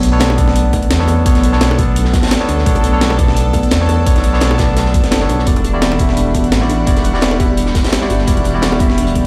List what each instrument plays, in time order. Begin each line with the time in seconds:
Already playing: detuned saw bass B1, ambient pad D4 A4, tine electric piano A4 C#5
0.03 closed hi-hat
0.12 tine electric piano B3 D4 A4 C#5
0.20 kalimba A3, snare, closed hi-hat
0.30 high bongo
0.37 tine electric piano B3 D4 A4 D5, kalimba D4, kick, closed hi-hat
0.48 snare
0.55 kalimba B3, closed hi-hat
0.73 kalimba A3, kick, closed hi-hat, high bongo
0.82 closed hi-hat
0.91 detuned saw bass E2, snare, closed hi-hat
0.99 tine electric piano B3 D4 A4 C#5, snare
1.08 kalimba B3, closed hi-hat, high bongo
1.25 detuned saw bass B1, tine electric piano B3 D4 A4 C#5, kick, closed hi-hat
1.35 snare, closed hi-hat, high bongo
1.43 kalimba B3, closed hi-hat
1.52 tine electric piano B3 D4 A4 C#5, snare
1.61 kalimba A3, snare, closed hi-hat
1.71 high bongo
1.77 tine electric piano B3 D4 A4 D5, kalimba F#4, kick, closed hi-hat
1.96 closed hi-hat
2.05 snare
2.13 kick, snare, closed hi-hat
2.22 snare, closed hi-hat
2.27 snare, closed hi-hat
2.31 kalimba F#4, snare, closed hi-hat
2.40 tine electric piano B3 D4 A4 C#5, snare
2.48 detuned saw bass D2, kalimba D4, closed hi-hat
2.59 snare
2.66 detuned saw bass B1, kalimba A3, tine electric piano B3 D4 A4 C#5, kick, closed hi-hat
2.75 closed hi-hat, high bongo
2.84 closed hi-hat
2.92 tine electric piano B3 D4 A4 C#5
3.01 kalimba A3, snare, closed hi-hat
3.10 high bongo
3.18 tine electric piano B3 D4 A4 D5, kalimba D4, kick, closed hi-hat
3.28 snare
3.36 kalimba B3, closed hi-hat
3.53 kalimba A3, kick, closed hi-hat, high bongo
3.63 closed hi-hat
3.71 detuned saw bass E2, snare, closed hi-hat
3.80 tine electric piano B3 D4 A4 C#5, snare
3.89 kalimba B3, closed hi-hat, high bongo
4.06 detuned saw bass B1, tine electric piano B3 D4 A4 C#5, kick, closed hi-hat
4.16 snare, closed hi-hat, high bongo
4.24 kalimba B3, closed hi-hat
4.33 tine electric piano B3 D4 A4 C#5, snare
4.41 kalimba A3, snare, closed hi-hat
4.51 high bongo
4.58 tine electric piano B3 D4 A4 D5, kalimba F#4, kick, snare, closed hi-hat
4.76 snare, closed hi-hat
4.86 snare
4.94 kick, closed hi-hat
5.04 snare, closed hi-hat
5.11 detuned saw bass F#1, kalimba F#4, snare, closed hi-hat
5.20 tine electric piano B3 D4 A4 C#5, snare
5.29 detuned saw bass B1, kalimba D4, closed hi-hat
5.39 snare
5.46 detuned saw bass E1, tine electric piano G3 E4 F#4 D5, ambient pad G3 F#5, kalimba B3, kick, closed hi-hat
5.56 closed hi-hat, high bongo
5.64 closed hi-hat
5.73 tine electric piano G3 E4 F#4 D5
5.82 kalimba B3, snare, closed hi-hat
5.92 high bongo
5.98 tine electric piano G3 E4 F#4 E5, kalimba F#4, kick, closed hi-hat
6.09 snare
6.17 kalimba D4, closed hi-hat
6.34 kalimba B3, kick, closed hi-hat, high bongo
6.44 closed hi-hat
6.52 detuned saw bass A1, snare, closed hi-hat
6.61 tine electric piano G3 E4 F#4 D5, snare
6.69 kalimba D4, closed hi-hat, high bongo
6.87 detuned saw bass E1, tine electric piano G3 E4 F#4 D5, kick, closed hi-hat
6.96 snare, closed hi-hat, high bongo
7.04 kalimba D4, closed hi-hat
7.13 tine electric piano G3 E4 F#4 D5, snare
7.21 kalimba B3, snare, closed hi-hat
7.31 high bongo
7.39 tine electric piano G3 E4 E5 F#5, kalimba G4, kick, closed hi-hat
7.57 closed hi-hat
7.66 snare
7.75 kick, snare, closed hi-hat
7.84 snare, closed hi-hat
7.88 snare, closed hi-hat
7.92 kalimba G4, snare, closed hi-hat
8.01 tine electric piano G3 E4 F#4 D5, snare
8.10 detuned saw bass G1, kalimba F#4, closed hi-hat
8.19 snare
8.27 detuned saw bass E1, tine electric piano G3 E4 F#4 D5, kalimba B3, ambient pad E4, kick, closed hi-hat
8.37 closed hi-hat, high bongo
8.44 closed hi-hat
8.54 tine electric piano G3 E4 F#4 D5
8.62 kalimba B3, snare, closed hi-hat
8.72 high bongo
8.79 tine electric piano G3 E4 F#4 E5, kalimba F#4, kick, closed hi-hat
8.90 snare
8.98 kalimba D4, closed hi-hat
9.07 closed hi-hat
9.15 kalimba B3, kick, closed hi-hat, high bongo